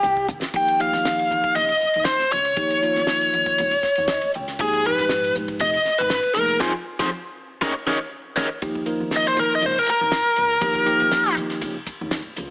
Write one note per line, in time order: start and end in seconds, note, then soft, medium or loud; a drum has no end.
0.00 0.27 C2 medium
0.00 0.26 G4 medium
0.00 hi-hat pedal medium
0.00 high tom medium
0.17 kick soft
0.29 0.52 D#2 medium
0.29 hi-hat pedal medium
0.29 mid tom medium
0.42 snare medium
0.54 0.91 D#2 medium
0.54 0.77 F3 medium
0.54 0.77 A#3 medium
0.54 0.77 D#4 medium
0.54 0.78 G4 medium
0.54 0.81 G5 medium
0.54 kick loud
0.54 hi-hat pedal medium
0.54 ride medium
0.68 ride medium
0.79 1.71 F3 medium
0.79 1.70 A#3 medium
0.79 1.71 D#4 medium
0.79 1.71 G4 medium
0.79 1.53 F5 medium
0.79 hi-hat pedal medium
0.93 1.29 D#3 medium
0.93 snare soft
0.93 ride medium
1.05 snare medium
1.05 hi-hat pedal medium
1.05 ride medium
1.19 ride medium
1.30 1.55 D#3 medium
1.30 hi-hat pedal medium
1.44 kick medium
1.44 ride soft
1.55 1.69 C#2 medium
1.55 2.05 D#5 medium
1.55 hi-hat pedal medium
1.55 ride medium
1.69 ride medium
1.80 muted upright bass stroke soft
1.80 hi-hat pedal medium
1.94 2.19 D#2 medium
1.94 ride soft
2.05 2.32 C5 medium
2.05 snare loud
2.05 hi-hat pedal medium
2.05 ride medium
2.19 muted upright bass stroke soft
2.19 snare soft
2.19 ride medium
2.31 2.56 C#2 medium
2.31 4.31 C#5 medium
2.31 hi-hat pedal medium
2.45 ride medium
2.56 2.94 D#2 medium
2.56 2.80 F3 medium
2.56 2.80 A#3 medium
2.56 2.80 D#4 medium
2.56 2.80 G4 medium
2.56 kick loud
2.56 hi-hat pedal medium
2.56 ride medium
2.70 ride medium
2.82 3.73 F3 medium
2.82 3.73 A#3 medium
2.82 3.73 D#4 medium
2.82 3.73 F4 medium
2.82 hi-hat pedal medium
2.96 3.32 D#3 medium
2.96 snare soft
2.96 ride medium
3.07 snare medium
3.07 hi-hat pedal medium
3.07 ride medium
3.21 ride medium
3.33 3.58 D#3 medium
3.33 hi-hat pedal medium
3.46 kick medium
3.46 ride soft
3.58 3.72 C#2 medium
3.58 hi-hat pedal medium
3.58 ride medium
3.71 ride medium
3.83 4.08 C#5 medium
3.83 muted upright bass stroke soft
3.83 kick medium
3.83 snare soft
3.83 hi-hat pedal medium
3.95 4.22 D#2 medium
3.95 ride medium
4.08 4.34 D#5 medium
4.08 snare loud
4.08 hi-hat pedal medium
4.08 ride medium
4.21 muted upright bass stroke soft
4.21 ride medium
4.33 4.59 C#2 medium
4.33 4.59 G5 medium
4.33 hi-hat pedal medium
4.48 snare soft
4.48 ride medium
4.59 4.96 G#1 medium
4.59 4.83 F3 medium
4.59 4.83 A#3 medium
4.59 4.83 D#4 medium
4.59 4.83 G4 medium
4.59 4.86 G#4 medium
4.59 kick loud
4.59 hi-hat pedal medium
4.59 ride medium
4.73 ride medium
4.84 5.76 A#2 medium
4.84 5.76 F3 medium
4.84 5.76 D#4 medium
4.84 5.76 G4 medium
4.84 5.33 B4 medium
4.84 hi-hat pedal medium
4.98 5.34 G#2 medium
4.98 snare soft
4.98 ride medium
5.09 snare medium
5.09 hi-hat pedal medium
5.09 ride medium
5.24 ride medium
5.35 5.60 G#2 medium
5.35 hi-hat pedal medium
5.48 kick medium
5.48 ride soft
5.60 5.73 F1 medium
5.60 6.01 D#5 medium
5.60 hi-hat pedal medium
5.60 ride medium
5.74 ride medium
5.85 muted upright bass stroke soft
5.85 snare soft
5.85 hi-hat pedal medium
5.98 6.24 G#1 medium
5.98 6.33 B4 medium
5.98 ride medium
6.10 snare medium
6.10 hi-hat pedal medium
6.10 ride medium
6.23 muted upright bass stroke soft
6.23 ride medium
6.34 6.60 F1 medium
6.34 6.62 F3 medium
6.34 6.62 A#3 medium
6.34 6.61 D#4 medium
6.34 6.62 G#4 medium
6.34 6.61 A#4 medium
6.34 hi-hat pedal medium
6.48 ride medium
6.60 6.71 F2 medium
6.60 6.70 C4 medium
6.60 6.70 D#4 medium
6.60 6.70 F4 medium
6.60 6.70 G#4 medium
6.60 6.70 C5 medium
6.60 kick medium
6.60 snare medium
6.99 7.09 F2 medium
6.99 7.08 C4 medium
6.99 7.07 D#4 medium
6.99 7.07 F4 medium
6.99 7.08 F4 medium
6.99 7.07 G#4 medium
6.99 7.08 C5 medium
6.99 kick medium
6.99 snare medium
7.61 7.72 D#2 medium
7.61 7.71 C#4 medium
7.61 7.71 D#4 medium
7.61 7.71 G#4 medium
7.61 7.71 A#4 medium
7.61 7.71 C#5 medium
7.61 7.72 D#5 medium
7.61 kick medium
7.61 snare medium
7.86 7.97 D#2 medium
7.86 7.96 C#4 medium
7.86 7.95 D#4 medium
7.86 7.95 G#4 medium
7.86 7.96 A#4 medium
7.86 7.96 C#5 medium
7.86 7.96 D#5 medium
7.86 kick medium
7.86 snare medium
8.36 8.47 D#2 medium
8.36 8.46 C#4 medium
8.36 8.46 D#4 medium
8.36 8.46 G#4 medium
8.36 8.46 A#4 medium
8.36 8.46 C#5 medium
8.36 8.46 D#5 medium
8.36 kick medium
8.36 snare medium
8.62 8.99 D#2 medium
8.62 8.85 F3 medium
8.62 8.85 A#3 medium
8.62 8.85 D#4 medium
8.62 8.85 G4 medium
8.62 kick loud
8.62 hi-hat pedal medium
8.62 ride medium
8.75 kick medium
8.86 9.76 F3 medium
8.86 9.77 A#3 medium
8.86 9.76 D#4 medium
8.86 9.76 A#4 medium
8.86 hi-hat pedal medium
8.86 ride medium
9.00 9.35 D#3 medium
9.11 snare medium
9.11 hi-hat pedal medium
9.11 ride medium
9.16 9.28 D#5 medium
9.25 9.38 C5 medium
9.25 snare soft
9.36 9.61 D#3 medium
9.36 9.52 A#4 medium
9.36 kick medium
9.36 hi-hat pedal medium
9.36 ride medium
9.55 9.66 D#5 medium
9.62 9.75 C#2 medium
9.62 hi-hat pedal medium
9.62 ride medium
9.66 9.79 C5 medium
9.79 9.89 A#4 medium
9.86 11.35 A#4 medium
9.86 muted upright bass stroke soft
9.86 hi-hat pedal medium
9.86 ride medium
10.01 10.25 D#2 medium
10.12 snare loud
10.12 hi-hat pedal medium
10.12 ride medium
10.26 muted upright bass stroke soft
10.36 10.61 C#2 medium
10.36 hi-hat pedal medium
10.36 ride medium
10.61 10.98 D#2 medium
10.61 10.84 F3 medium
10.61 10.84 A#3 medium
10.61 10.84 D#4 medium
10.61 10.84 G4 medium
10.61 kick loud
10.61 hi-hat pedal medium
10.61 ride medium
10.75 kick medium
10.86 11.76 F3 medium
10.86 11.76 A#3 medium
10.86 11.76 D#4 medium
10.86 11.76 G4 loud
10.86 kick medium
10.86 hi-hat pedal medium
10.86 ride medium
11.00 11.36 D#3 medium
11.00 ride medium
11.11 snare medium
11.11 hi-hat pedal medium
11.11 ride medium
11.25 snare soft
11.37 11.61 D#3 medium
11.37 hi-hat pedal medium
11.37 ride medium
11.50 snare soft
11.50 ride medium
11.61 11.74 C#2 medium
11.61 kick medium
11.61 hi-hat pedal medium
11.61 ride medium
11.86 muted upright bass stroke soft
11.86 kick medium
11.86 hi-hat pedal medium
11.86 ride medium
12.01 12.24 D#2 medium
12.11 snare loud
12.11 hi-hat pedal medium
12.11 ride medium
12.26 muted upright bass stroke soft
12.36 12.50 C#2 medium
12.36 hi-hat pedal medium
12.36 ride medium